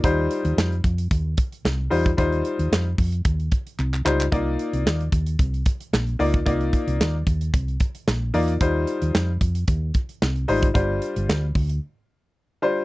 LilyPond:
<<
  \new Staff \with { instrumentName = "Grand piano" } { \time 4/4 \key c \minor \tempo 4 = 112 <g ees' f' c''>4~ <g ees' f' c''>16 r2 r16 <g ees' f' c''>8 | <g ees' f' c''>4~ <g ees' f' c''>16 r2 r16 <g ees' f' c''>8 | <bes ees' f' d''>4~ <bes ees' f' d''>16 r2 r16 <bes ees' f' d''>8 | <bes ees' f' d''>4~ <bes ees' f' d''>16 r2 r16 <bes ees' f' d''>8 |
<g ees' f' c''>4~ <g ees' f' c''>16 r2 r16 <g ees' f' c''>8 | <g d' f' c''>4~ <g d' f' c''>16 r2 r16 <g d' f' c''>8 | }
  \new Staff \with { instrumentName = "Fingered electric bass" } { \clef bass \time 4/4 \key c \minor ees,8 r16 ees,16 f,8 f,8 ees,8 r8 c,8 e,8 | ees,8 r16 ees,16 f,8 f,8 ees,8 r8 c,8 des,8 | c,8 r16 c,16 ees,8 ees,8 c,8 r8 bes,,8 des,8 | c,8 r16 c,16 ees,8 ees,8 c,8 r8 bes,,8 e,8 |
ees,8 r16 ees,16 f,8 f,8 ees,8 r8 c,8 aes,,8 | g,,8 r16 g,,16 d,8 d,8 r2 | }
  \new DrumStaff \with { instrumentName = "Drums" } \drummode { \time 4/4 <hh bd>8 hh16 hh16 <hc sn>16 hh16 <hh bd>16 hh16 <hh bd>8 <hh bd>16 hh16 <hc sn>8 hho16 <hh bd>16 | <hh bd>16 hh16 hh16 hh16 <hc sn>8 <hho bd>16 hh16 <hh bd>16 hh16 <hh bd>16 hh16 hc16 hc16 hc16 hc16 | <hh bd>8 hh16 hh16 <hc sn>16 hh16 <hh bd>16 hh16 <hh bd>16 hh16 <hh bd>16 hh16 <hc sn>16 hh16 hho16 <hh bd>16 | <hh bd>16 hh16 <hh bd>16 hh16 <hc sn>8 <hh bd>16 hh16 <hh bd>16 hh16 <hh bd>16 hh16 <hc sn>8 hho16 hh16 |
<hh bd>8 hh16 hh16 <hc sn>8 <hh bd>16 hh16 <hh bd>8 <hh bd>16 hh16 <hc sn>16 hh16 hho16 <hh bd>16 | <hh bd>8 hh16 hh16 <hc sn>8 <hho bd>16 hh16 r4 r4 | }
>>